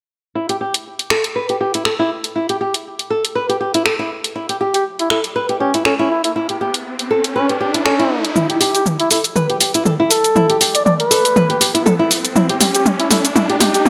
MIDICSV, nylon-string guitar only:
0, 0, Header, 1, 2, 480
1, 0, Start_track
1, 0, Tempo, 500000
1, 341, Time_signature, 4, 2, 24, 8
1, 13336, End_track
2, 0, Start_track
2, 0, Title_t, "Nylon-string guitar"
2, 0, Program_c, 0, 24
2, 339, Note_on_c, 0, 64, 73
2, 467, Note_off_c, 0, 64, 0
2, 473, Note_on_c, 0, 67, 66
2, 531, Note_off_c, 0, 67, 0
2, 584, Note_on_c, 0, 67, 69
2, 702, Note_off_c, 0, 67, 0
2, 1064, Note_on_c, 0, 69, 66
2, 1183, Note_off_c, 0, 69, 0
2, 1302, Note_on_c, 0, 71, 73
2, 1422, Note_off_c, 0, 71, 0
2, 1435, Note_on_c, 0, 67, 67
2, 1492, Note_off_c, 0, 67, 0
2, 1542, Note_on_c, 0, 67, 67
2, 1661, Note_off_c, 0, 67, 0
2, 1677, Note_on_c, 0, 64, 70
2, 1772, Note_off_c, 0, 64, 0
2, 1783, Note_on_c, 0, 69, 73
2, 1854, Note_off_c, 0, 69, 0
2, 1914, Note_on_c, 0, 64, 86
2, 2010, Note_off_c, 0, 64, 0
2, 2261, Note_on_c, 0, 64, 72
2, 2388, Note_off_c, 0, 64, 0
2, 2395, Note_on_c, 0, 67, 66
2, 2452, Note_off_c, 0, 67, 0
2, 2503, Note_on_c, 0, 67, 69
2, 2622, Note_off_c, 0, 67, 0
2, 2980, Note_on_c, 0, 69, 69
2, 3101, Note_off_c, 0, 69, 0
2, 3220, Note_on_c, 0, 71, 76
2, 3341, Note_off_c, 0, 71, 0
2, 3353, Note_on_c, 0, 67, 69
2, 3411, Note_off_c, 0, 67, 0
2, 3461, Note_on_c, 0, 67, 67
2, 3581, Note_off_c, 0, 67, 0
2, 3595, Note_on_c, 0, 64, 72
2, 3691, Note_off_c, 0, 64, 0
2, 3701, Note_on_c, 0, 69, 73
2, 3773, Note_off_c, 0, 69, 0
2, 3832, Note_on_c, 0, 64, 90
2, 3929, Note_off_c, 0, 64, 0
2, 4181, Note_on_c, 0, 64, 71
2, 4308, Note_off_c, 0, 64, 0
2, 4313, Note_on_c, 0, 67, 68
2, 4371, Note_off_c, 0, 67, 0
2, 4422, Note_on_c, 0, 67, 70
2, 4542, Note_off_c, 0, 67, 0
2, 4902, Note_on_c, 0, 69, 67
2, 5022, Note_off_c, 0, 69, 0
2, 5142, Note_on_c, 0, 71, 78
2, 5262, Note_off_c, 0, 71, 0
2, 5272, Note_on_c, 0, 67, 69
2, 5331, Note_off_c, 0, 67, 0
2, 5379, Note_on_c, 0, 67, 68
2, 5500, Note_off_c, 0, 67, 0
2, 5515, Note_on_c, 0, 64, 69
2, 5610, Note_off_c, 0, 64, 0
2, 5622, Note_on_c, 0, 69, 75
2, 5694, Note_off_c, 0, 69, 0
2, 5754, Note_on_c, 0, 64, 92
2, 5850, Note_off_c, 0, 64, 0
2, 6103, Note_on_c, 0, 64, 73
2, 6229, Note_off_c, 0, 64, 0
2, 6238, Note_on_c, 0, 67, 66
2, 6293, Note_off_c, 0, 67, 0
2, 6345, Note_on_c, 0, 67, 71
2, 6463, Note_off_c, 0, 67, 0
2, 6822, Note_on_c, 0, 69, 69
2, 6942, Note_off_c, 0, 69, 0
2, 7063, Note_on_c, 0, 71, 78
2, 7182, Note_off_c, 0, 71, 0
2, 7197, Note_on_c, 0, 67, 73
2, 7253, Note_off_c, 0, 67, 0
2, 7301, Note_on_c, 0, 67, 70
2, 7421, Note_off_c, 0, 67, 0
2, 7433, Note_on_c, 0, 64, 71
2, 7529, Note_off_c, 0, 64, 0
2, 7540, Note_on_c, 0, 69, 75
2, 7613, Note_off_c, 0, 69, 0
2, 7674, Note_on_c, 0, 64, 92
2, 7770, Note_off_c, 0, 64, 0
2, 8020, Note_on_c, 0, 64, 75
2, 8147, Note_off_c, 0, 64, 0
2, 8153, Note_on_c, 0, 67, 68
2, 8211, Note_off_c, 0, 67, 0
2, 8260, Note_on_c, 0, 67, 74
2, 8381, Note_off_c, 0, 67, 0
2, 8743, Note_on_c, 0, 69, 73
2, 8862, Note_off_c, 0, 69, 0
2, 8982, Note_on_c, 0, 71, 77
2, 9102, Note_off_c, 0, 71, 0
2, 9117, Note_on_c, 0, 67, 70
2, 9173, Note_off_c, 0, 67, 0
2, 9223, Note_on_c, 0, 67, 70
2, 9342, Note_off_c, 0, 67, 0
2, 9357, Note_on_c, 0, 64, 75
2, 9451, Note_off_c, 0, 64, 0
2, 9463, Note_on_c, 0, 69, 78
2, 9534, Note_off_c, 0, 69, 0
2, 9596, Note_on_c, 0, 64, 93
2, 9691, Note_off_c, 0, 64, 0
2, 9943, Note_on_c, 0, 64, 77
2, 10069, Note_off_c, 0, 64, 0
2, 10077, Note_on_c, 0, 67, 70
2, 10133, Note_off_c, 0, 67, 0
2, 10183, Note_on_c, 0, 67, 75
2, 10302, Note_off_c, 0, 67, 0
2, 10662, Note_on_c, 0, 69, 73
2, 10782, Note_off_c, 0, 69, 0
2, 10904, Note_on_c, 0, 71, 79
2, 11023, Note_off_c, 0, 71, 0
2, 11036, Note_on_c, 0, 67, 74
2, 11093, Note_off_c, 0, 67, 0
2, 11141, Note_on_c, 0, 67, 71
2, 11261, Note_off_c, 0, 67, 0
2, 11275, Note_on_c, 0, 64, 75
2, 11370, Note_off_c, 0, 64, 0
2, 11382, Note_on_c, 0, 69, 81
2, 11453, Note_off_c, 0, 69, 0
2, 11514, Note_on_c, 0, 64, 96
2, 11610, Note_off_c, 0, 64, 0
2, 11861, Note_on_c, 0, 64, 74
2, 11988, Note_off_c, 0, 64, 0
2, 11995, Note_on_c, 0, 67, 67
2, 12052, Note_off_c, 0, 67, 0
2, 12101, Note_on_c, 0, 67, 68
2, 12221, Note_off_c, 0, 67, 0
2, 12582, Note_on_c, 0, 69, 71
2, 12701, Note_off_c, 0, 69, 0
2, 12822, Note_on_c, 0, 64, 79
2, 12948, Note_off_c, 0, 64, 0
2, 12955, Note_on_c, 0, 67, 72
2, 13012, Note_off_c, 0, 67, 0
2, 13063, Note_on_c, 0, 67, 70
2, 13182, Note_off_c, 0, 67, 0
2, 13336, End_track
0, 0, End_of_file